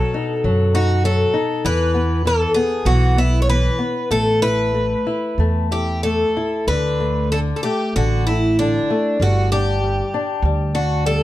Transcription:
Already playing: B2 F#3 A4
0.14 D#4
0.44 F#2 F#3
0.74 D#4 F#4
1.04 F#3 A4
1.34 D#4
1.65 E2 E3 B4
1.94 B3
2.25 E3 A4
2.54 B3 G#4
2.85 B1 E3 F#4
3.16 B3 E4
3.42 C#5
3.49 E3 B4
3.79 B3
4.11 A1 A3 A4
4.42 E4 B4
4.74 A3
5.07 E4
5.38 E2 A3
5.71 E4 G4
6.03 A3 A4
6.37 E4
6.67 D2 D3 B4
7.00 A3
7.32 D3 A4
7.56 A4
7.63 A3 G4
7.96 A1 D3 F#4
8.27 A3 E4
8.59 D3 D4
8.90 A3
9.20 G1 G3 F#4
9.52 D4 G4
9.84 G3
10.14 D4
10.42 D2 G3
10.74 D4 F#4
11.06 G3 A4

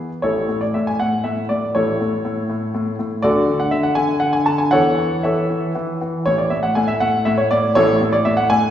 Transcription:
0.22 A1 A2 E4 A4 C#5
0.49 A2
0.61 D5
0.74 A2 E5
0.87 G#5
1.00 A2 F#5
1.24 A2 E5
1.49 A2 D5
1.75 A1 A2 E4 A4 C#5
2.01 A2
2.25 A2
2.50 A2
2.74 A2
2.99 A2
3.22 D2 D3 F#4 A4 D5
3.48 D3
3.60 F#5
3.71 D3 E5
3.83 F#5
3.95 D3 G#5
4.20 D3 F#5
4.33 G#5
4.46 D3 A5
4.58 G#5
4.71 E2 E3 A4 C#5 F#5
4.98 E3
5.23 E3 A4 C#5 E5
5.50 E3
5.75 E3
6.01 E3
6.26 A1 A2 C#5
6.38 D5
6.50 A2 E5
6.63 F#5
6.75 A2 G#5
6.88 E5
7.00 A2 F#5
7.25 A2 E5
7.38 C#5
7.51 A2 D5
7.75 A1 A2 E4 A4 C#5
8.02 A2
8.13 D5
8.25 A2 E5
8.37 F#5
8.50 A2 G#5

